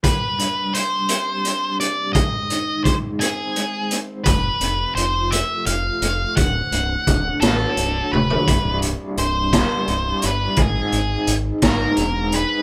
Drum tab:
HH |x-x-x-x-x-x-|x-x-x-x-x-x-|x-x-x-x-x-x-|x-x-x-x-x---|
SD |------------|------------|------------|------o-----|
T1 |------------|------------|------------|----------o-|
FT |------------|------------|------------|-----------o|
BD |o-----------|o---o-------|o-----------|o---o-------|

HH |x-x-x-x-x-x-|x-x-x-x-x-x-|
SD |------o-----|------o-----|
T1 |------------|------------|
FT |------------|------------|
BD |o-----o-----|o-----o-----|